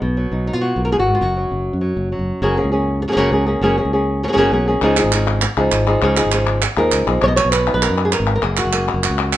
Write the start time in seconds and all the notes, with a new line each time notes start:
0.02 B1 B2
0.17 F#3
0.32 B1 D#4
0.47 D#4
0.53 B2 F4
0.61 F#3 F#4
0.76 B1 A#3
0.85 A#4
0.92 A#2 G#4
0.98 G#1 F#4
1.07 G#2
1.15 F4
1.21 F#1 F#2 F#4
1.37 F#3
1.51 F#1
1.73 F#2
1.81 F#3
1.97 F#1
2.12 F#3
2.19 F#1
2.42 F#1 C#3 F#3 A#3 C#4 G#4
2.57 A#3 C#4 G#4
2.64 C#2
2.72 A#3 C#4 G#4
3.02 muted nylon-string guitar stroke
3.08 F#3 A#3 C#4 G#4
3.12 F#3 A#3 C#4 G#4
3.17 F#1 C#3 F#3 A#3 C#4 G#4
3.31 C#2 F#3 A#3 C#4 G#4
3.46 A#3 C#4 G#4
3.61 F#1 C#3 F#3 A#3 C#4 G#4
3.78 A#3 C#4 G#4
3.85 C#2
3.93 A#3 C#4 G#4
4.23 F#3 A#3 C#4, muted nylon-string guitar stroke
4.28 F#3 A#3 C#4 G#4
4.33 F#1 F#3 A#3 C#4 G#4
4.37 C#3 F#3 A#3 C#4 G#4
4.51 B1 F#3 A#3 C#4 G#4
4.68 A#3 C#4 G#4
4.82 C#2 C#3 F3 D#4 G#4
4.97 F3 D#4 G#4, clap
5.04 G#1
5.12 C#3 F3 D#4 G#4, clap
5.42 muted nylon-string guitar stroke, clap
5.57 C#2 F3 D#4 G#4
5.72 G#1, clap
5.87 F3 D#4 G#4
6.02 C#2 C#3 F3 D#4 G#4, clap
6.17 F3 D#4 G#4, clap
6.25 G#1
6.32 C#3 F3 D#4 G#4, clap
6.62 muted nylon-string guitar stroke, clap
6.77 D#2 F3 D#4 G#4 A#4
6.92 C#2, clap
7.07 B1 F3 D#4 G#4, clap
7.21 B1 B2 C#5
7.28 D#5
7.36 C#5, clap
7.45 B1
7.52 B3 B4, clap
7.67 D#4, clap
7.74 B1 B4
7.82 A#4, clap
7.90 F#2
7.98 clap
8.05 G#4
8.12 A#4, clap
8.20 G#1
8.36 A#4
8.41 F#1 F#2 A#3 G#4, clap
8.57 F#4, clap
8.65 F#1
8.72 A#3 G#4, clap
8.88 A#3
8.94 F#1
9.04 F#4, clap
9.10 C#2
9.33 clap